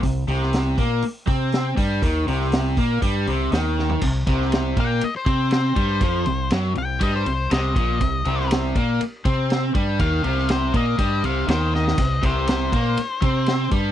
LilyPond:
<<
  \new Staff \with { instrumentName = "Lead electric guitar" } { \time 4/4 \key c \minor \tempo 4 = 121 r1 | r1 | r4. g''8 ees''16 c''8. c''4~ | c''4 r8 g''8 ees''16 c''8. ees''4~ |
ees''4 r2. | f''4 c''8 ees''4 f''8 c''8 ees''8~ | ees''8 c''2. r8 | }
  \new Staff \with { instrumentName = "Overdriven electric guitar" } { \clef bass \time 4/4 \key c \minor c8 c4 bes8 r8 c'4 g8 | ees8 c4 bes8 g8 c8 ees4 | c8 c4 bes8 r8 c'4 g8 | f8 c8 fis8 c8 g8 c8 c8 bes,8 |
c8 c4 bes8 r8 c'4 g8 | ees8 c4 bes8 g8 c8 ees4 | c8 c4 bes8 r8 c'4 g8 | }
  \new Staff \with { instrumentName = "Fingered electric bass" } { \clef bass \time 4/4 \key c \minor c,8 c,4 bes,8 r8 c4 g,8 | ees,8 c,4 bes,8 g,8 c,8 ees,4 | c,8 c,4 bes,8 r8 c4 g,8 | f,8 c,8 fis,8 c,8 g,8 c,8 c,8 bes,,8 |
c,8 c,4 bes,8 r8 c4 g,8 | ees,8 c,4 bes,8 g,8 c,8 ees,4 | c,8 c,4 bes,8 r8 c4 g,8 | }
  \new DrumStaff \with { instrumentName = "Drums" } \drummode { \time 4/4 <hho bd>8 hho16 sn16 <hho sn>8 <hho bd>8 hho8 <hho bd>8 <hho sn>8 <hho bd>8 | <hho bd>8 hho16 sn16 <hho sn>8 <hho bd>8 <hho bd>8 hho8 <hho sn>8 sn16 tomfh16 | <cymc bd>8 <bd cymr>16 sn16 <cymr sn>8 <bd cymr>8 cymr8 <bd cymr>8 <cymr sn>8 <bd cymr>8 | <bd cymr>8 cymr8 <cymr sn>8 cymr8 <bd cymr>8 cymr8 <cymr sn>8 <bd cymr>8 |
<bd cymr>8 cymr16 sn16 <cymr sn>8 <bd cymr>8 cymr8 <bd cymr>8 <cymr sn>8 <bd cymr>8 | <bd cymr>8 cymr16 sn16 <cymr sn>8 <bd cymr>8 <bd cymr>8 cymr8 <cymr sn>8 sn16 sn16 | <cymc bd cymr>8 <bd cymr>8 <cymr sn>8 <bd cymr>8 cymr8 <bd cymr>8 <cymr sn>8 <bd cymr>8 | }
>>